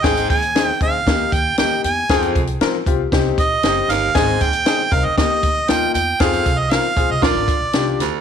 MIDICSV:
0, 0, Header, 1, 8, 480
1, 0, Start_track
1, 0, Key_signature, -3, "major"
1, 0, Tempo, 513259
1, 39, Time_signature, 4, 2, 24, 8
1, 7675, End_track
2, 0, Start_track
2, 0, Title_t, "Harmonica"
2, 0, Program_c, 0, 22
2, 48, Note_on_c, 0, 79, 100
2, 276, Note_off_c, 0, 79, 0
2, 281, Note_on_c, 0, 80, 90
2, 609, Note_off_c, 0, 80, 0
2, 609, Note_on_c, 0, 79, 90
2, 729, Note_off_c, 0, 79, 0
2, 772, Note_on_c, 0, 77, 85
2, 1246, Note_on_c, 0, 79, 96
2, 1260, Note_off_c, 0, 77, 0
2, 1480, Note_off_c, 0, 79, 0
2, 1486, Note_on_c, 0, 79, 91
2, 1709, Note_off_c, 0, 79, 0
2, 1723, Note_on_c, 0, 80, 89
2, 2050, Note_off_c, 0, 80, 0
2, 2050, Note_on_c, 0, 79, 89
2, 2171, Note_off_c, 0, 79, 0
2, 3177, Note_on_c, 0, 75, 103
2, 3662, Note_on_c, 0, 77, 101
2, 3676, Note_off_c, 0, 75, 0
2, 3897, Note_on_c, 0, 80, 93
2, 3911, Note_off_c, 0, 77, 0
2, 4134, Note_on_c, 0, 79, 98
2, 4148, Note_off_c, 0, 80, 0
2, 4615, Note_on_c, 0, 77, 93
2, 4630, Note_off_c, 0, 79, 0
2, 4728, Note_on_c, 0, 75, 87
2, 4742, Note_off_c, 0, 77, 0
2, 4840, Note_off_c, 0, 75, 0
2, 4846, Note_on_c, 0, 75, 90
2, 5324, Note_on_c, 0, 79, 105
2, 5338, Note_off_c, 0, 75, 0
2, 5553, Note_off_c, 0, 79, 0
2, 5559, Note_on_c, 0, 79, 92
2, 5808, Note_on_c, 0, 77, 89
2, 5822, Note_off_c, 0, 79, 0
2, 6161, Note_on_c, 0, 75, 79
2, 6175, Note_off_c, 0, 77, 0
2, 6279, Note_on_c, 0, 77, 82
2, 6293, Note_off_c, 0, 75, 0
2, 6652, Note_on_c, 0, 75, 78
2, 6666, Note_off_c, 0, 77, 0
2, 6760, Note_on_c, 0, 74, 76
2, 6774, Note_off_c, 0, 75, 0
2, 7481, Note_off_c, 0, 74, 0
2, 7675, End_track
3, 0, Start_track
3, 0, Title_t, "Upright piano"
3, 0, Program_c, 1, 0
3, 38, Note_on_c, 1, 60, 94
3, 38, Note_on_c, 1, 63, 81
3, 39, Note_on_c, 1, 68, 111
3, 281, Note_off_c, 1, 60, 0
3, 281, Note_off_c, 1, 63, 0
3, 282, Note_off_c, 1, 68, 0
3, 518, Note_on_c, 1, 63, 63
3, 518, Note_on_c, 1, 68, 77
3, 519, Note_on_c, 1, 60, 76
3, 641, Note_off_c, 1, 60, 0
3, 641, Note_off_c, 1, 63, 0
3, 641, Note_off_c, 1, 68, 0
3, 764, Note_on_c, 1, 63, 52
3, 764, Note_on_c, 1, 68, 65
3, 767, Note_on_c, 1, 60, 66
3, 884, Note_off_c, 1, 63, 0
3, 884, Note_off_c, 1, 68, 0
3, 886, Note_off_c, 1, 60, 0
3, 1003, Note_on_c, 1, 67, 73
3, 1004, Note_on_c, 1, 58, 76
3, 1004, Note_on_c, 1, 63, 60
3, 1245, Note_off_c, 1, 58, 0
3, 1245, Note_off_c, 1, 63, 0
3, 1245, Note_off_c, 1, 67, 0
3, 1484, Note_on_c, 1, 63, 68
3, 1485, Note_on_c, 1, 67, 77
3, 1486, Note_on_c, 1, 58, 70
3, 1726, Note_off_c, 1, 63, 0
3, 1727, Note_off_c, 1, 58, 0
3, 1727, Note_off_c, 1, 67, 0
3, 1964, Note_on_c, 1, 60, 107
3, 1964, Note_on_c, 1, 68, 113
3, 1967, Note_on_c, 1, 65, 89
3, 2206, Note_off_c, 1, 60, 0
3, 2206, Note_off_c, 1, 68, 0
3, 2208, Note_off_c, 1, 65, 0
3, 2441, Note_on_c, 1, 60, 95
3, 2442, Note_on_c, 1, 70, 93
3, 2443, Note_on_c, 1, 65, 82
3, 2564, Note_off_c, 1, 60, 0
3, 2564, Note_off_c, 1, 70, 0
3, 2565, Note_off_c, 1, 65, 0
3, 2684, Note_on_c, 1, 60, 73
3, 2686, Note_on_c, 1, 65, 73
3, 2686, Note_on_c, 1, 67, 86
3, 2805, Note_off_c, 1, 60, 0
3, 2806, Note_off_c, 1, 67, 0
3, 2807, Note_off_c, 1, 65, 0
3, 2921, Note_on_c, 1, 63, 71
3, 2923, Note_on_c, 1, 60, 85
3, 2923, Note_on_c, 1, 67, 97
3, 3165, Note_off_c, 1, 63, 0
3, 3166, Note_off_c, 1, 60, 0
3, 3166, Note_off_c, 1, 67, 0
3, 3401, Note_on_c, 1, 63, 69
3, 3403, Note_on_c, 1, 60, 72
3, 3405, Note_on_c, 1, 67, 81
3, 3644, Note_off_c, 1, 63, 0
3, 3646, Note_off_c, 1, 60, 0
3, 3646, Note_off_c, 1, 67, 0
3, 3877, Note_on_c, 1, 63, 93
3, 3880, Note_on_c, 1, 68, 110
3, 3881, Note_on_c, 1, 60, 94
3, 4122, Note_off_c, 1, 63, 0
3, 4124, Note_off_c, 1, 60, 0
3, 4124, Note_off_c, 1, 68, 0
3, 4356, Note_on_c, 1, 60, 71
3, 4356, Note_on_c, 1, 63, 68
3, 4358, Note_on_c, 1, 68, 80
3, 4481, Note_off_c, 1, 60, 0
3, 4481, Note_off_c, 1, 63, 0
3, 4482, Note_off_c, 1, 68, 0
3, 4600, Note_on_c, 1, 70, 67
3, 4601, Note_on_c, 1, 60, 60
3, 4601, Note_on_c, 1, 63, 62
3, 4723, Note_off_c, 1, 60, 0
3, 4723, Note_off_c, 1, 63, 0
3, 4723, Note_off_c, 1, 70, 0
3, 4840, Note_on_c, 1, 63, 71
3, 4840, Note_on_c, 1, 67, 74
3, 4843, Note_on_c, 1, 58, 70
3, 5083, Note_off_c, 1, 63, 0
3, 5083, Note_off_c, 1, 67, 0
3, 5084, Note_off_c, 1, 58, 0
3, 5321, Note_on_c, 1, 65, 81
3, 5323, Note_on_c, 1, 63, 66
3, 5324, Note_on_c, 1, 58, 78
3, 5563, Note_off_c, 1, 65, 0
3, 5564, Note_off_c, 1, 63, 0
3, 5565, Note_off_c, 1, 58, 0
3, 5800, Note_on_c, 1, 60, 105
3, 5803, Note_on_c, 1, 65, 94
3, 5803, Note_on_c, 1, 68, 105
3, 6043, Note_off_c, 1, 60, 0
3, 6044, Note_off_c, 1, 65, 0
3, 6044, Note_off_c, 1, 68, 0
3, 6282, Note_on_c, 1, 60, 65
3, 6282, Note_on_c, 1, 65, 67
3, 6282, Note_on_c, 1, 70, 78
3, 6402, Note_off_c, 1, 65, 0
3, 6403, Note_off_c, 1, 60, 0
3, 6403, Note_off_c, 1, 70, 0
3, 6518, Note_on_c, 1, 68, 73
3, 6521, Note_on_c, 1, 60, 68
3, 6521, Note_on_c, 1, 65, 61
3, 6641, Note_off_c, 1, 68, 0
3, 6642, Note_off_c, 1, 60, 0
3, 6642, Note_off_c, 1, 65, 0
3, 6752, Note_on_c, 1, 62, 68
3, 6753, Note_on_c, 1, 65, 66
3, 6756, Note_on_c, 1, 70, 79
3, 6998, Note_off_c, 1, 62, 0
3, 6998, Note_off_c, 1, 65, 0
3, 7000, Note_off_c, 1, 70, 0
3, 7235, Note_on_c, 1, 65, 65
3, 7238, Note_on_c, 1, 62, 68
3, 7240, Note_on_c, 1, 67, 81
3, 7480, Note_off_c, 1, 65, 0
3, 7481, Note_off_c, 1, 62, 0
3, 7482, Note_off_c, 1, 67, 0
3, 7675, End_track
4, 0, Start_track
4, 0, Title_t, "Horn section"
4, 0, Program_c, 2, 61
4, 6756, Note_on_c, 2, 58, 83
4, 6757, Note_on_c, 2, 53, 93
4, 6757, Note_on_c, 2, 65, 101
4, 6758, Note_on_c, 2, 50, 78
4, 7101, Note_off_c, 2, 50, 0
4, 7101, Note_off_c, 2, 53, 0
4, 7101, Note_off_c, 2, 58, 0
4, 7101, Note_off_c, 2, 65, 0
4, 7675, End_track
5, 0, Start_track
5, 0, Title_t, "Baritone saxophone"
5, 0, Program_c, 3, 67
5, 46, Note_on_c, 3, 44, 90
5, 383, Note_off_c, 3, 44, 0
5, 1970, Note_on_c, 3, 41, 79
5, 2307, Note_off_c, 3, 41, 0
5, 3651, Note_on_c, 3, 39, 92
5, 3841, Note_off_c, 3, 39, 0
5, 3892, Note_on_c, 3, 44, 84
5, 4227, Note_off_c, 3, 44, 0
5, 5810, Note_on_c, 3, 41, 71
5, 6144, Note_off_c, 3, 41, 0
5, 7486, Note_on_c, 3, 38, 83
5, 7675, Note_off_c, 3, 38, 0
5, 7675, End_track
6, 0, Start_track
6, 0, Title_t, "Upright bass"
6, 0, Program_c, 4, 32
6, 36, Note_on_c, 4, 32, 83
6, 223, Note_off_c, 4, 32, 0
6, 277, Note_on_c, 4, 39, 89
6, 650, Note_off_c, 4, 39, 0
6, 756, Note_on_c, 4, 38, 86
6, 944, Note_off_c, 4, 38, 0
6, 995, Note_on_c, 4, 39, 95
6, 1184, Note_off_c, 4, 39, 0
6, 1234, Note_on_c, 4, 39, 91
6, 1423, Note_off_c, 4, 39, 0
6, 1485, Note_on_c, 4, 39, 77
6, 1670, Note_off_c, 4, 39, 0
6, 1722, Note_on_c, 4, 40, 96
6, 1908, Note_off_c, 4, 40, 0
6, 1960, Note_on_c, 4, 41, 96
6, 2147, Note_off_c, 4, 41, 0
6, 2201, Note_on_c, 4, 36, 86
6, 2388, Note_off_c, 4, 36, 0
6, 2437, Note_on_c, 4, 53, 86
6, 2625, Note_off_c, 4, 53, 0
6, 2675, Note_on_c, 4, 36, 88
6, 2864, Note_off_c, 4, 36, 0
6, 2916, Note_on_c, 4, 36, 108
6, 3105, Note_off_c, 4, 36, 0
6, 3160, Note_on_c, 4, 34, 83
6, 3347, Note_off_c, 4, 34, 0
6, 3396, Note_on_c, 4, 30, 89
6, 3585, Note_off_c, 4, 30, 0
6, 3631, Note_on_c, 4, 31, 93
6, 3822, Note_off_c, 4, 31, 0
6, 3882, Note_on_c, 4, 32, 111
6, 4068, Note_off_c, 4, 32, 0
6, 4125, Note_on_c, 4, 39, 88
6, 4402, Note_off_c, 4, 39, 0
6, 4598, Note_on_c, 4, 36, 100
6, 4693, Note_off_c, 4, 36, 0
6, 4719, Note_on_c, 4, 38, 88
6, 4813, Note_off_c, 4, 38, 0
6, 4837, Note_on_c, 4, 39, 94
6, 4932, Note_off_c, 4, 39, 0
6, 5074, Note_on_c, 4, 38, 79
6, 5263, Note_off_c, 4, 38, 0
6, 5325, Note_on_c, 4, 39, 72
6, 5509, Note_off_c, 4, 39, 0
6, 5561, Note_on_c, 4, 40, 91
6, 5747, Note_off_c, 4, 40, 0
6, 5797, Note_on_c, 4, 41, 101
6, 5984, Note_off_c, 4, 41, 0
6, 6037, Note_on_c, 4, 36, 84
6, 6317, Note_off_c, 4, 36, 0
6, 6510, Note_on_c, 4, 34, 82
6, 6607, Note_off_c, 4, 34, 0
6, 6635, Note_on_c, 4, 36, 88
6, 6730, Note_off_c, 4, 36, 0
6, 6756, Note_on_c, 4, 34, 86
6, 6851, Note_off_c, 4, 34, 0
6, 6868, Note_on_c, 4, 32, 99
6, 6966, Note_off_c, 4, 32, 0
6, 7112, Note_on_c, 4, 34, 81
6, 7208, Note_off_c, 4, 34, 0
6, 7228, Note_on_c, 4, 36, 81
6, 7418, Note_off_c, 4, 36, 0
6, 7472, Note_on_c, 4, 38, 87
6, 7568, Note_off_c, 4, 38, 0
6, 7675, End_track
7, 0, Start_track
7, 0, Title_t, "Muted upright bass strokes"
7, 4961, Note_on_c, 9, 29, 54
7, 5055, Note_off_c, 9, 29, 0
7, 7675, End_track
8, 0, Start_track
8, 0, Title_t, "Drums"
8, 37, Note_on_c, 9, 42, 95
8, 38, Note_on_c, 9, 36, 110
8, 43, Note_on_c, 9, 38, 102
8, 130, Note_off_c, 9, 42, 0
8, 131, Note_off_c, 9, 36, 0
8, 136, Note_off_c, 9, 38, 0
8, 160, Note_on_c, 9, 42, 52
8, 253, Note_off_c, 9, 42, 0
8, 280, Note_on_c, 9, 36, 92
8, 281, Note_on_c, 9, 42, 73
8, 373, Note_off_c, 9, 36, 0
8, 375, Note_off_c, 9, 42, 0
8, 395, Note_on_c, 9, 42, 53
8, 489, Note_off_c, 9, 42, 0
8, 520, Note_on_c, 9, 42, 82
8, 524, Note_on_c, 9, 38, 104
8, 613, Note_off_c, 9, 42, 0
8, 618, Note_off_c, 9, 38, 0
8, 756, Note_on_c, 9, 36, 98
8, 760, Note_on_c, 9, 42, 64
8, 849, Note_off_c, 9, 36, 0
8, 853, Note_off_c, 9, 42, 0
8, 998, Note_on_c, 9, 36, 92
8, 1003, Note_on_c, 9, 42, 81
8, 1005, Note_on_c, 9, 38, 105
8, 1091, Note_off_c, 9, 36, 0
8, 1097, Note_off_c, 9, 42, 0
8, 1099, Note_off_c, 9, 38, 0
8, 1238, Note_on_c, 9, 36, 102
8, 1242, Note_on_c, 9, 42, 82
8, 1331, Note_off_c, 9, 36, 0
8, 1335, Note_off_c, 9, 42, 0
8, 1473, Note_on_c, 9, 42, 86
8, 1480, Note_on_c, 9, 38, 107
8, 1567, Note_off_c, 9, 42, 0
8, 1573, Note_off_c, 9, 38, 0
8, 1722, Note_on_c, 9, 42, 94
8, 1816, Note_off_c, 9, 42, 0
8, 1957, Note_on_c, 9, 42, 85
8, 1960, Note_on_c, 9, 36, 102
8, 1963, Note_on_c, 9, 38, 107
8, 2051, Note_off_c, 9, 42, 0
8, 2053, Note_off_c, 9, 36, 0
8, 2057, Note_off_c, 9, 38, 0
8, 2081, Note_on_c, 9, 42, 51
8, 2175, Note_off_c, 9, 42, 0
8, 2203, Note_on_c, 9, 36, 101
8, 2204, Note_on_c, 9, 42, 69
8, 2297, Note_off_c, 9, 36, 0
8, 2297, Note_off_c, 9, 42, 0
8, 2313, Note_on_c, 9, 42, 53
8, 2406, Note_off_c, 9, 42, 0
8, 2440, Note_on_c, 9, 42, 81
8, 2445, Note_on_c, 9, 38, 107
8, 2534, Note_off_c, 9, 42, 0
8, 2538, Note_off_c, 9, 38, 0
8, 2679, Note_on_c, 9, 36, 102
8, 2682, Note_on_c, 9, 42, 69
8, 2773, Note_off_c, 9, 36, 0
8, 2775, Note_off_c, 9, 42, 0
8, 2920, Note_on_c, 9, 36, 99
8, 2924, Note_on_c, 9, 42, 81
8, 2926, Note_on_c, 9, 38, 113
8, 3013, Note_off_c, 9, 36, 0
8, 3018, Note_off_c, 9, 42, 0
8, 3020, Note_off_c, 9, 38, 0
8, 3160, Note_on_c, 9, 36, 98
8, 3162, Note_on_c, 9, 42, 81
8, 3254, Note_off_c, 9, 36, 0
8, 3256, Note_off_c, 9, 42, 0
8, 3396, Note_on_c, 9, 42, 84
8, 3403, Note_on_c, 9, 38, 101
8, 3489, Note_off_c, 9, 42, 0
8, 3496, Note_off_c, 9, 38, 0
8, 3646, Note_on_c, 9, 42, 90
8, 3651, Note_on_c, 9, 38, 36
8, 3739, Note_off_c, 9, 42, 0
8, 3745, Note_off_c, 9, 38, 0
8, 3882, Note_on_c, 9, 42, 89
8, 3883, Note_on_c, 9, 36, 105
8, 3888, Note_on_c, 9, 38, 91
8, 3976, Note_off_c, 9, 42, 0
8, 3977, Note_off_c, 9, 36, 0
8, 3982, Note_off_c, 9, 38, 0
8, 4123, Note_on_c, 9, 42, 69
8, 4124, Note_on_c, 9, 36, 91
8, 4216, Note_off_c, 9, 42, 0
8, 4218, Note_off_c, 9, 36, 0
8, 4234, Note_on_c, 9, 42, 57
8, 4328, Note_off_c, 9, 42, 0
8, 4358, Note_on_c, 9, 42, 85
8, 4362, Note_on_c, 9, 38, 113
8, 4451, Note_off_c, 9, 42, 0
8, 4456, Note_off_c, 9, 38, 0
8, 4599, Note_on_c, 9, 36, 107
8, 4602, Note_on_c, 9, 42, 70
8, 4693, Note_off_c, 9, 36, 0
8, 4695, Note_off_c, 9, 42, 0
8, 4840, Note_on_c, 9, 36, 92
8, 4843, Note_on_c, 9, 42, 84
8, 4845, Note_on_c, 9, 38, 124
8, 4934, Note_off_c, 9, 36, 0
8, 4936, Note_off_c, 9, 42, 0
8, 4939, Note_off_c, 9, 38, 0
8, 5080, Note_on_c, 9, 36, 91
8, 5080, Note_on_c, 9, 42, 76
8, 5173, Note_off_c, 9, 36, 0
8, 5174, Note_off_c, 9, 42, 0
8, 5314, Note_on_c, 9, 42, 81
8, 5320, Note_on_c, 9, 38, 105
8, 5407, Note_off_c, 9, 42, 0
8, 5414, Note_off_c, 9, 38, 0
8, 5564, Note_on_c, 9, 42, 87
8, 5658, Note_off_c, 9, 42, 0
8, 5797, Note_on_c, 9, 42, 95
8, 5801, Note_on_c, 9, 36, 103
8, 5803, Note_on_c, 9, 38, 107
8, 5891, Note_off_c, 9, 42, 0
8, 5894, Note_off_c, 9, 36, 0
8, 5897, Note_off_c, 9, 38, 0
8, 5923, Note_on_c, 9, 42, 54
8, 6017, Note_off_c, 9, 42, 0
8, 6041, Note_on_c, 9, 36, 96
8, 6043, Note_on_c, 9, 42, 68
8, 6135, Note_off_c, 9, 36, 0
8, 6136, Note_off_c, 9, 42, 0
8, 6277, Note_on_c, 9, 42, 83
8, 6282, Note_on_c, 9, 38, 103
8, 6370, Note_off_c, 9, 42, 0
8, 6375, Note_off_c, 9, 38, 0
8, 6515, Note_on_c, 9, 36, 93
8, 6519, Note_on_c, 9, 42, 70
8, 6609, Note_off_c, 9, 36, 0
8, 6613, Note_off_c, 9, 42, 0
8, 6756, Note_on_c, 9, 36, 84
8, 6760, Note_on_c, 9, 42, 88
8, 6762, Note_on_c, 9, 38, 127
8, 6849, Note_off_c, 9, 36, 0
8, 6854, Note_off_c, 9, 42, 0
8, 6856, Note_off_c, 9, 38, 0
8, 6995, Note_on_c, 9, 36, 91
8, 6999, Note_on_c, 9, 42, 83
8, 7088, Note_off_c, 9, 36, 0
8, 7093, Note_off_c, 9, 42, 0
8, 7231, Note_on_c, 9, 42, 82
8, 7238, Note_on_c, 9, 38, 99
8, 7325, Note_off_c, 9, 42, 0
8, 7332, Note_off_c, 9, 38, 0
8, 7483, Note_on_c, 9, 42, 90
8, 7489, Note_on_c, 9, 38, 35
8, 7577, Note_off_c, 9, 42, 0
8, 7583, Note_off_c, 9, 38, 0
8, 7675, End_track
0, 0, End_of_file